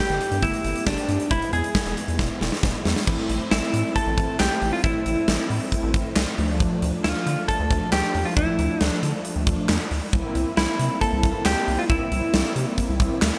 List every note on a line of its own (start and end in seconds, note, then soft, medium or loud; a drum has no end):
0.00 1.27 A3 medium
0.00 1.27 B3 medium
0.00 0.44 G4 loud
0.00 1.27 G4 medium
0.09 0.19 G1 medium
0.09 closed hi-hat soft
0.21 closed hi-hat medium
0.31 0.41 G2 loud
0.31 closed hi-hat medium
0.42 0.52 G1 loud
0.42 0.86 E4 medium
0.42 kick loud
0.42 closed hi-hat medium
0.54 closed hi-hat medium
0.64 0.74 G1 loud
0.64 closed hi-hat medium
0.76 closed hi-hat medium
0.87 0.96 G1 medium
0.87 1.32 D4 medium
0.87 kick loud
0.87 snare loud
0.98 closed hi-hat medium
1.09 1.19 G2 loud
1.09 closed hi-hat medium
1.20 closed hi-hat medium
1.31 1.41 E1 loud
1.31 3.04 G#3 medium
1.31 3.04 B3 medium
1.31 3.04 E4 medium
1.31 1.51 E4 medium
1.31 kick loud
1.31 closed hi-hat medium
1.42 closed hi-hat medium
1.53 1.63 E2 loud
1.53 1.94 G#4 medium
1.53 closed hi-hat medium
1.64 closed hi-hat medium
1.75 kick loud
1.75 snare loud
1.86 1.96 E1 loud
1.86 closed hi-hat soft
1.97 closed hi-hat medium
2.08 2.18 E2 loud
2.08 closed hi-hat medium
2.19 2.29 E1 loud
2.19 kick medium
2.19 snare medium
2.41 2.51 E1 loud
2.41 snare medium
2.52 snare medium
2.63 2.73 E1 loud
2.63 kick loud
2.63 snare medium
2.85 2.95 E2 loud
2.85 snare loud
2.96 snare medium
3.07 3.17 A1 loud
3.07 6.34 A3 medium
3.07 6.34 C4 medium
3.07 6.34 E4 medium
3.07 kick loud
3.07 crash medium
3.29 3.39 A1 medium
3.29 closed hi-hat medium
3.51 3.61 A1 loud
3.51 3.97 E4 medium
3.51 snare loud
3.51 closed hi-hat medium
3.73 3.83 A2 loud
3.73 closed hi-hat medium
3.96 4.37 A4 loud
3.96 kick medium
3.96 closed hi-hat medium
4.07 4.16 A1 loud
4.18 4.27 A1 loud
4.18 kick loud
4.18 closed hi-hat medium
4.40 4.50 B1 medium
4.40 4.71 G4 medium
4.40 snare loud
4.40 clap medium
4.40 closed hi-hat medium
4.62 4.72 A1 loud
4.62 open hi-hat medium
4.73 4.83 F4 medium
4.84 4.94 A1 loud
4.84 5.46 E4 medium
4.84 kick loud
4.84 closed hi-hat medium
5.06 5.16 A1 loud
5.06 closed hi-hat medium
5.28 5.38 A1 medium
5.28 snare loud
5.28 closed hi-hat medium
5.50 5.60 A2 loud
5.50 open hi-hat medium
5.72 kick medium
5.72 closed hi-hat medium
5.83 5.93 A1 loud
5.94 6.04 A1 loud
5.94 kick loud
5.94 closed hi-hat medium
6.16 6.26 C2 loud
6.16 snare loud
6.16 clap medium
6.16 closed hi-hat medium
6.38 6.68 D2 loud
6.38 9.87 F3 medium
6.38 9.87 A3 medium
6.38 9.87 D4 medium
6.38 open hi-hat medium
6.60 kick loud
6.60 closed hi-hat medium
6.82 6.92 D2 loud
6.82 closed hi-hat medium
7.04 7.14 D2 medium
7.04 7.45 F4 loud
7.04 snare loud
7.04 closed hi-hat medium
7.26 7.36 D3 loud
7.26 closed hi-hat medium
7.48 7.89 A4 loud
7.48 kick medium
7.48 closed hi-hat medium
7.60 7.69 D2 loud
7.70 7.80 D2 loud
7.70 kick loud
7.70 closed hi-hat medium
7.92 8.02 D2 medium
7.92 8.27 G4 loud
7.92 snare loud
7.92 clap medium
7.92 closed hi-hat medium
8.14 8.24 E2 medium
8.14 open hi-hat medium
8.25 8.36 F4 medium
8.36 8.47 D2 loud
8.36 8.83 E4 medium
8.36 kick loud
8.36 closed hi-hat medium
8.59 8.69 D2 loud
8.59 closed hi-hat medium
8.81 8.91 D2 loud
8.81 8.99 D4 medium
8.81 snare loud
8.81 closed hi-hat medium
9.03 9.13 D3 medium
9.03 closed hi-hat medium
9.25 closed hi-hat medium
9.36 9.46 D2 loud
9.47 9.57 D2 loud
9.47 kick loud
9.47 closed hi-hat medium
9.69 9.79 E2 medium
9.69 snare loud
9.69 clap medium
9.69 closed hi-hat medium
9.91 10.01 D2 medium
9.91 open hi-hat medium
10.13 10.23 C2 loud
10.13 13.39 A#3 medium
10.13 13.39 C4 medium
10.13 13.39 E4 medium
10.13 kick loud
10.13 closed hi-hat medium
10.35 10.45 C2 loud
10.35 closed hi-hat medium
10.57 10.67 C2 medium
10.57 10.98 E4 medium
10.57 snare loud
10.57 closed hi-hat medium
10.79 10.89 C3 loud
10.79 closed hi-hat medium
11.01 11.45 A4 loud
11.01 kick medium
11.01 closed hi-hat medium
11.12 11.22 C2 medium
11.23 11.33 C2 loud
11.23 kick loud
11.23 closed hi-hat medium
11.45 11.55 D2 medium
11.45 11.80 G4 loud
11.45 snare loud
11.45 clap medium
11.45 closed hi-hat medium
11.68 11.77 C2 loud
11.68 open hi-hat medium
11.79 11.84 F4 medium
11.90 11.99 C2 loud
11.90 12.52 E4 medium
11.90 kick loud
11.90 closed hi-hat medium
12.12 12.22 C2 loud
12.12 closed hi-hat medium
12.34 12.44 C2 medium
12.34 snare loud
12.34 closed hi-hat medium
12.56 12.66 C3 loud
12.56 closed hi-hat medium
12.78 kick medium
12.78 closed hi-hat medium
12.89 12.99 C2 medium
13.00 13.10 C2 loud
13.00 kick loud
13.00 closed hi-hat medium
13.22 13.32 D2 medium
13.22 snare loud
13.22 clap medium
13.22 closed hi-hat medium